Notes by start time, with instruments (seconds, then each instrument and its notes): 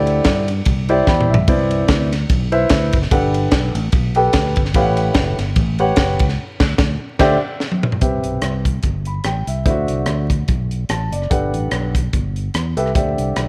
Already playing: fingered electric bass D2, upright piano D3 E4 G4 C5 D5
0.07 ride
0.24 fingered electric bass G2, kick, snare, ride
0.48 ride
0.65 fingered electric bass C2, kick, ride
0.89 upright piano E4 G4 C5 D5 E5, ride
1.07 fingered electric bass E2, upright piano G5 B5, kick, snare
1.20 mid tom
1.30 fingered electric bass B1, upright piano E5
1.34 floor tom
1.48 fingered electric bass C2, upright piano C3 E4 B4 C5 D5, kick, ride
1.71 ride
1.88 fingered electric bass D2, kick, snare, ride
2.12 snare, ride
2.29 fingered electric bass B1, kick, ride
2.52 upright piano E4 B4 C5 E5, ride
2.69 fingered electric bass D2, kick, snare, ride
2.93 fingered electric bass F#1, kick, ride
3.02 snare
3.11 fingered electric bass G1, upright piano G2 G4 A4 B4 F#5, kick, ride
3.34 ride
3.51 fingered electric bass B1, kick, snare, ride
3.75 fingered electric bass A1, ride
3.92 fingered electric bass B1, kick, ride
4.15 upright piano G4 A4 B4 G5, ride
4.33 fingered electric bass D2, kick, snare, ride
4.56 fingered electric bass G1, kick, ride
4.65 snare
4.74 fingered electric bass A1, upright piano A2 G4 B4 C#5 F5, kick, ride
4.81 upright piano F#5
4.97 ride
5.14 fingered electric bass F#1, kick, snare, ride
5.38 fingered electric bass G1, snare, ride
5.56 fingered electric bass A1, kick, ride
5.79 upright piano G4 B4 C#5 F#5, ride
5.96 fingered electric bass F#1, kick, snare, ride
6.19 fingered electric bass C#2, kick, ride
6.28 snare
6.60 fingered electric bass D2, kick, snare, crash
6.78 fingered electric bass D2, kick, snare
7.19 fingered electric bass D2, upright piano D3 G4 C5 D5 E5, kick, snare, crash
7.60 snare
7.72 high tom
7.83 mid tom
7.92 floor tom
8.01 fingered electric bass C2, upright piano C3 G4 B4 C5 E5, kick, closed hi-hat
8.24 fingered electric bass B1, closed hi-hat
8.42 fingered electric bass C2, cross-stick, closed hi-hat
8.65 kick, closed hi-hat
8.83 fingered electric bass G1, kick, closed hi-hat
9.05 upright piano B5, closed hi-hat
9.24 fingered electric bass A1, upright piano G5, cross-stick, closed hi-hat
9.47 fingered electric bass C2, upright piano E5, closed hi-hat
9.66 fingered electric bass D2, upright piano D3 E4 C5 D5 E5, kick, closed hi-hat
9.70 upright piano F#4
9.88 fingered electric bass C2, closed hi-hat
10.06 fingered electric bass D2, cross-stick, closed hi-hat
10.30 kick, cross-stick, closed hi-hat
10.48 fingered electric bass B1, kick, closed hi-hat
10.71 closed hi-hat
10.89 fingered electric bass A1, upright piano A5, cross-stick, closed hi-hat
11.11 fingered electric bass F#1, upright piano D5, closed hi-hat
11.22 cross-stick
11.30 fingered electric bass G1, upright piano G2 G4 A4 B4 F#5, kick, closed hi-hat
11.53 fingered electric bass A1, closed hi-hat
11.71 fingered electric bass B1, cross-stick, closed hi-hat
11.95 kick, cross-stick, closed hi-hat
12.13 fingered electric bass G1, kick, closed hi-hat
12.36 closed hi-hat
12.54 fingered electric bass E2, cross-stick, closed hi-hat
12.76 fingered electric bass C2, upright piano G4 A4 B4 E5, closed hi-hat
12.86 cross-stick
12.95 fingered electric bass D2, upright piano D3 G4 C5 D5 E5, kick, closed hi-hat
13.18 fingered electric bass C2, closed hi-hat
13.36 fingered electric bass B1, cross-stick, closed hi-hat